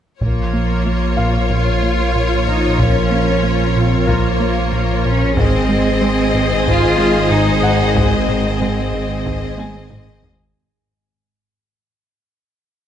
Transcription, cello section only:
0.21 A#3
1.51 F4
2.48 D#4
2.80 C#4
3.77 C4
4.09 A#3
5.05 C#4
5.37 C4
6.67 F4
7.32 D#4
7.96 C4

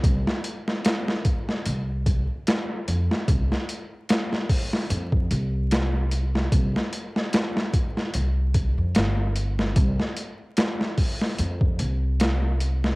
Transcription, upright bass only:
0.04 C2
1.66 C2
2.88 F2
3.28 C2
4.90 F2
5.31 C2
6.52 C2
8.15 C2
8.78 F2
8.96 G1
9.77 C2
11.39 F2
11.80 C2

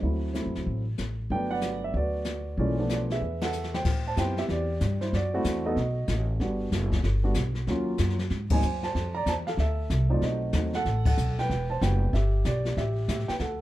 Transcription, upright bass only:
0.03 D2
0.46 F#2
0.57 C#2
0.67 A1
0.99 A1
1.30 G1
1.94 D2
2.57 B1
3.21 E2
3.85 A2
4.17 F#2
4.49 E2
4.81 G2
5.13 F#2
5.45 E2
5.76 B1
6.08 A1
6.40 G1
6.72 F#1
7.04 G1
7.35 B1
7.67 D#2
7.99 F#2
8.31 G#2
8.63 F#2
8.95 F2
9.26 E2
9.57 D2
9.90 C2
10.21 B1
10.53 D#2
10.85 A1
11.18 B1
11.50 E1
11.81 F#1
12.13 G1
12.45 B1
12.77 A1
13.08 A2
13.29 muted upright bass stroke
13.39 D2

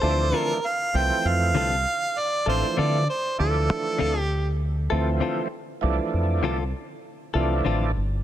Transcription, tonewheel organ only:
0.03 E3 F3 A3 D4
0.94 E3 F3 A3 C4
2.47 E3 F3 A3 D4
3.38 E3 F3 A3 D4
4.90 E3 F3 A3 C4
5.81 E3 F3 A3 D4
7.34 E3 F3 A3 D4

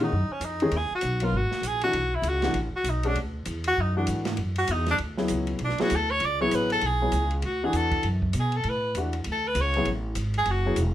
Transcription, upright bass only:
Already playing: A#2
0.12 F#2
0.30 muted upright bass stroke
0.40 F2
0.71 D#2
0.91 muted upright bass stroke
1.03 B1
1.32 G#1
1.51 muted upright bass stroke
1.62 A#1
1.93 B1
2.22 C#2
2.53 A1
2.73 muted upright bass stroke
2.84 B1
3.15 D2
3.46 E2
3.78 F#2
4.08 G#2
4.38 F#2
4.68 E2
4.99 D2
5.30 C#2
5.59 B1
5.79 muted upright bass stroke
5.91 D2
6.21 C#2
6.52 A1
6.82 B1
7.12 C#2
7.43 D2
7.73 E2
8.04 F#2
8.34 B2
8.64 A2
8.95 E2
9.26 D2
9.55 C#2
9.86 A1
10.16 G#1
10.46 F#1
10.76 E1

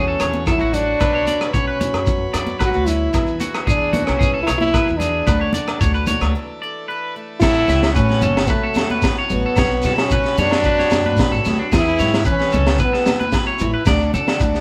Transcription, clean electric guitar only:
0.08 A4
0.20 C#5
0.47 A4
0.61 F#4
0.74 F#4
1.01 B4
1.15 C#5
1.27 D5
1.53 C#5
1.68 B4
1.81 muted clean electric guitar stroke
2.33 D5
2.59 B4
3.14 muted clean electric guitar stroke
3.40 F#4
3.67 G#4
3.93 F#4
4.19 G#4
4.34 A4
4.47 C#5
4.74 B4
4.87 muted clean electric guitar stroke
5.00 G#4
5.27 B4
5.41 C#5
5.54 D5
5.81 C#5
5.94 B4
6.07 C#5
6.62 D5
6.88 B4
7.42 A4
7.70 E5
7.96 B4
8.23 A4
8.50 B4
8.63 A4
8.91 B4
9.19 C#5
9.46 A4
9.58 C#5
9.86 A4
10.12 B4
10.39 C#5
10.66 B4
10.79 C#5
11.06 B4
11.32 A4
11.59 D4
11.72 G#4
11.99 C#5
12.26 B4
12.53 A4
12.80 B4
12.93 A4
13.20 B4
13.47 C#5
13.74 B4
13.87 D5
14.14 A4
14.41 muted clean electric guitar stroke

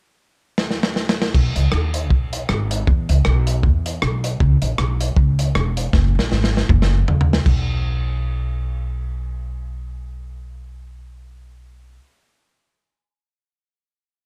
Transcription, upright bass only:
1.35 B1
1.56 C#2
1.73 D#2
2.11 B1
2.50 G#1
2.88 E2
3.10 C#2
3.26 B1
3.64 E2
4.02 B1
4.41 C#2
4.62 A#1
4.79 B1
5.17 C#2
5.55 E1
5.94 F#1
6.15 A#1
6.32 G#1
6.70 F#1
7.08 C#2
7.46 B1

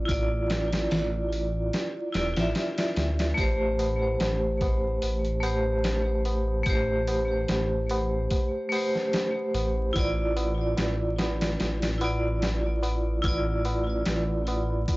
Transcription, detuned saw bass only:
0.09 A1
0.92 A1
2.15 E1
2.37 A1
2.97 D2
3.38 A1
4.20 A1
5.03 A1
6.66 A1
7.49 A1
9.54 A1
9.96 A1
10.79 A1
11.61 A1
13.24 A1
14.07 A1

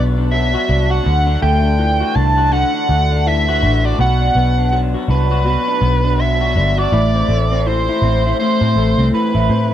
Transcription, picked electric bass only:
Already playing: B1
0.69 C2
1.06 D2
1.43 D2
2.16 C2
2.89 D2
3.63 A1
3.99 B1
4.35 B1
5.08 C2
5.82 B1
6.56 G1
6.92 A1
7.29 A1
8.02 A1
8.61 A2
8.76 A1
8.98 C2
9.13 muted picked electric bass stroke
9.35 A1
9.50 A2

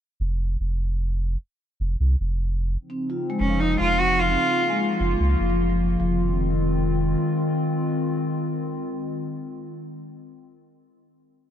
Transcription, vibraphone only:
2.90 C4
3.10 F4
3.30 G#3
3.50 F3
3.70 G#3
3.90 F3
4.10 F3
4.30 C4
4.50 F4
4.70 G#3
4.90 F3
5.10 G#3
5.30 F3
5.50 F3
5.70 F3
5.90 F3
6.00 F3

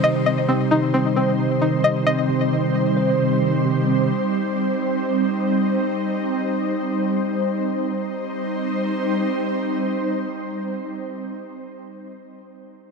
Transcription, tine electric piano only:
Already playing: C3 D#3 G3 C4 C5
0.04 C3
0.26 C4
0.49 C3
0.71 D#3
0.94 G3
1.16 C5
1.39 C3
1.61 D#3
1.84 C3
2.06 C4
2.29 C3
2.52 D#3
2.74 G3
2.97 C5
3.19 C3
3.42 D#3
3.65 C3
3.87 C4

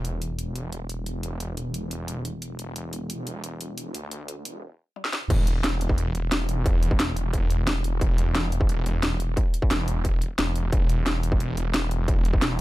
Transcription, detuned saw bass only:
Already playing: E1
0.73 E1
1.23 E1
2.59 E1
3.44 E1
3.95 D2
4.45 E1
5.30 E1
6.15 E1
6.66 E1
8.01 E1
8.86 E1
9.71 E1
10.39 E1
10.56 E1
10.72 E1
11.57 E1
12.08 E1

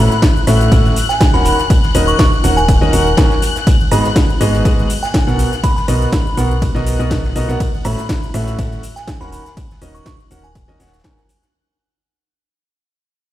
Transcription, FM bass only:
0.47 A1
0.72 A1
1.34 D#1
1.95 D#1
2.44 D#1
2.81 D#1
2.93 D#1
3.18 D#1
3.91 G#1
4.41 G#1
4.65 G#1
5.27 B1
5.88 B1
6.37 B1
6.75 B1
6.99 B1
7.36 B1
7.49 B1
7.85 A1
8.34 A1
8.59 A1
9.21 D#1
9.82 D#1
10.31 D#1
10.68 D#1
10.80 D#1
11.05 D#1

